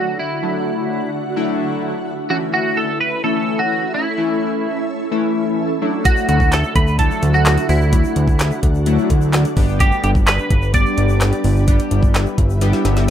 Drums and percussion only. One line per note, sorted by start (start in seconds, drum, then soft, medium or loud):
6.05 kick loud
6.05 closed hi-hat loud
6.05 shaker medium
6.17 shaker medium
6.29 closed hi-hat medium
6.40 kick loud
6.40 shaker soft
6.52 snare medium
6.52 clap loud
6.52 closed hi-hat medium
6.52 shaker medium
6.64 shaker medium
6.76 kick loud
6.76 closed hi-hat medium
6.87 shaker medium
6.99 kick loud
6.99 closed hi-hat loud
6.99 shaker medium
7.11 shaker soft
7.22 closed hi-hat medium
7.22 shaker soft
7.34 shaker medium
7.46 snare loud
7.46 clap loud
7.46 closed hi-hat medium
7.46 shaker medium
7.57 closed hi-hat soft
7.57 shaker medium
7.69 open hi-hat medium
7.69 shaker medium
7.81 shaker medium
7.93 kick loud
7.93 closed hi-hat loud
7.93 shaker medium
8.04 shaker medium
8.16 closed hi-hat medium
8.28 kick loud
8.28 shaker soft
8.39 snare loud
8.39 clap loud
8.39 closed hi-hat medium
8.39 shaker medium
8.51 shaker medium
8.63 kick loud
8.63 closed hi-hat medium
8.75 shaker medium
8.86 closed hi-hat medium
8.86 shaker medium
8.98 shaker soft
9.10 kick loud
9.10 closed hi-hat medium
9.10 shaker soft
9.21 shaker medium
9.33 snare medium
9.33 clap loud
9.33 closed hi-hat medium
9.33 shaker medium
9.45 closed hi-hat soft
9.45 shaker soft
9.57 kick loud
9.57 open hi-hat medium
9.57 shaker medium
9.69 shaker medium
9.80 kick loud
9.80 closed hi-hat loud
9.80 shaker medium
9.92 shaker medium
10.04 closed hi-hat medium
10.15 kick loud
10.15 shaker soft
10.27 snare loud
10.27 clap loud
10.27 closed hi-hat medium
10.27 shaker medium
10.39 shaker medium
10.51 kick loud
10.51 closed hi-hat medium
10.62 shaker medium
10.74 kick loud
10.74 closed hi-hat loud
10.74 shaker medium
10.86 shaker soft
10.97 closed hi-hat medium
10.97 shaker soft
11.09 shaker medium
11.21 snare loud
11.21 clap loud
11.21 closed hi-hat medium
11.21 shaker medium
11.32 closed hi-hat soft
11.32 shaker medium
11.44 open hi-hat medium
11.44 shaker medium
11.56 shaker medium
11.68 kick loud
11.68 closed hi-hat loud
11.68 shaker medium
11.79 closed hi-hat medium
11.79 shaker medium
11.91 closed hi-hat medium
12.03 kick loud
12.03 shaker soft
12.14 snare loud
12.14 clap loud
12.14 closed hi-hat medium
12.14 shaker medium
12.26 shaker medium
12.38 kick loud
12.38 closed hi-hat medium
12.50 shaker medium
12.61 snare medium
12.61 closed hi-hat medium
12.61 shaker medium
12.73 snare medium
12.73 shaker soft
12.85 snare medium
12.85 closed hi-hat medium
12.85 shaker soft
12.96 snare medium
12.96 shaker medium